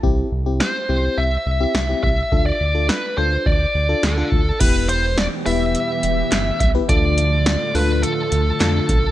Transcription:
<<
  \new Staff \with { instrumentName = "Lead electric guitar" } { \time 4/4 \key d \dorian \tempo 4 = 105 r4 c''4 e''4. e''8~ | e''16 d''8. b'8 c''8 d''4 a'4 | b'8 c''8 d''8 e''2 e''8 | d''4. b'8 a'4 a'4 | }
  \new Staff \with { instrumentName = "FM electric piano" } { \time 4/4 \key d \dorian <c' e' g'>8 r16 <c' e' g'>8 r16 <c' e' g'>8. r8 <c' e' g'>16 r16 <c' e' g'>8 r16 | <d' f' a'>8 r16 <d' f' a'>8 r16 <d' f' a'>8. r8 <d' f' a'>16 r16 <d' f' a'>8 r16 | <b e' g' b'>8. r8. <b e' g' b'>4 r4 r16 <b e' g' b'>16 | <a d' f' a'>8. r8. <a d' f' a'>8. r8. <a d' f' a'>8 r8 | }
  \new Staff \with { instrumentName = "String machine" } { \time 4/4 \key d \dorian r1 | r1 | <e b g'>1 | <d a f'>1 | }
  \new Staff \with { instrumentName = "Analog synth bass" } { \clef bass \time 4/4 \key d \dorian c,8 c,8. r16 c,8 c,8 c,8 c,8 c,8 | d,8 d,8. r16 d,8 d,8 d,8 d,8 d,8 | e,,4~ e,,16 r16 e,,8. r16 e,,8 g,,8 c,8 | d,4~ d,16 r16 d,8. r16 d,8 f,8 b,,8 | }
  \new DrumStaff \with { instrumentName = "Drums" } \drummode { \time 4/4 bd4 sn4 r4 sn8 bd8 | bd4 sn4 bd4 sn8 bd8 | <cymc hh bd>8 hh8 <hh sn>8 hho8 hh8 hh8 <hc hh sn>8 <hh bd>8 | <hh bd>8 hh8 <hh sn>8 hho8 hh8 hh8 <hc hh sn>8 <hh bd>8 | }
>>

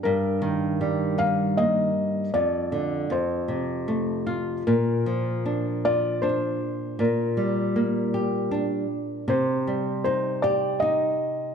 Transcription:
<<
  \new Staff \with { instrumentName = "Felt piano" } { \time 3/4 \key bes \major \tempo 4 = 78 bes'4. f''8 ees''4 | d''4 c''4 r4 | bes'4. d''8 c''4 | bes'2 r4 |
c''4 c''8 d''8 ees''4 | }
  \new Staff \with { instrumentName = "Nylon-string guitar" } { \clef bass \time 3/4 \key bes \major g,8 ees8 g8 ees'8 bes4 | f,8 d8 f,8 c8 a8 f'8 | bes,8 f8 d'8 f'8 d'4 | bes,8 g8 bes8 g'8 d'4 |
c8 g8 ees'8 g'8 ees'4 | }
>>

